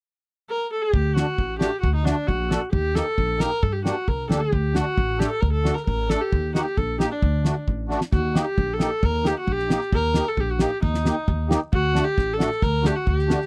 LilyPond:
<<
  \new Staff \with { instrumentName = "Viola" } { \time 2/4 \tempo 4 = 134 r4 bes'8 a'16 g'16~ | g'8 fis'4 g'8 | fis'16 ees'16 d'8 fis'8. r16 | g'8 a'4 bes'8 |
a'16 g'16 fis'8 bes'8 a'16 g'16~ | g'8 fis'4 g'16 a'16 | bes'16 a'8 bes'16 bes'8 a'16 g'16~ | g'8 fis'16 g'16 a'8 g'16 d'16~ |
d'4 r4 | \tuplet 3/2 { fis'4 g'8~ g'8 a'4 } | bes'8 g'16 fis'16 g'8. r16 | bes'8. a'16 g'16 fis'16 g'8 |
ees'4. r8 | \tuplet 3/2 { fis'4 g'8~ g'8 a'4 } | bes'8 g'16 fis'16 g'8. r16 | }
  \new Staff \with { instrumentName = "Accordion" } { \time 2/4 r2 | r8 <a d' fis'>16 r8. <a d' fis'>16 r16 | r8 <a d' fis'>16 r8. <a d' a'>16 r16 | r8 <bes ees' g'>16 r8. <bes ees' g'>16 r16 |
r8 <bes d' g'>16 r8. <bes d' g'>16 r16 | r8 <a d' fis'>16 r8. <a d' a'>16 r16 | r8 <a d' fis'>16 r8. <a d' a'>16 r16 | r8 <bes ees' g'>16 r8. <bes ees' g'>16 r16 |
r8 <a d' fis'>16 r8. <a d' fis'>16 r16 | r8 <bes ees' g'>16 r8. <bes ees' g'>16 r16 | r8 <bes ees' g'>16 r8. <bes ees' g'>16 r16 | r8 <bes ees' g'>16 r8. <bes ees' g'>16 r16 |
r8 <bes ees' g'>16 r8. <bes ees' g'>16 r16 | r8 <a d' fis'>16 r8. <a d' fis'>16 r16 | r8 <a d' fis'>16 r8. <a d' fis'>16 r16 | }
  \new Staff \with { instrumentName = "Upright bass" } { \clef bass \time 2/4 r2 | d,4 a,,4 | d,4 bes,,4 | ees,4 bes,,4 |
g,4 c,8 d,8 | d,4 a,,4 | d,4 a,,4 | ees,4 bes,,4 |
d,4 a,,4 | ees,4 bes,,4 | ees,4 bes,,4 | ees,4 bes,,4 |
ees,4 ees,4 | d,4 a,,4 | d,4 d,4 | }
  \new DrumStaff \with { instrumentName = "Drums" } \drummode { \time 2/4 r4 r4 | bd8 sn8 bd8 sn8 | bd8 sn8 bd8 sn8 | bd8 sn8 bd8 sn8 |
bd8 sn8 bd8 sn8 | bd8 sn8 bd8 sn8 | bd8 sn16 sn16 bd8 sn8 | bd8 sn8 bd8 sn8 |
bd8 sn8 bd8 sn16 sn16 | <bd sn>8 sn8 bd8 sn8 | bd8 sn8 bd16 sn16 sn16 sn16 | bd8 sn8 bd8 sn8 |
bd16 sn16 sn8 bd8 sn8 | bd8 sn8 <bd sn>8 sn16 sn16 | <bd sn>8 sn8 bd16 sn16 sn16 sn16 | }
>>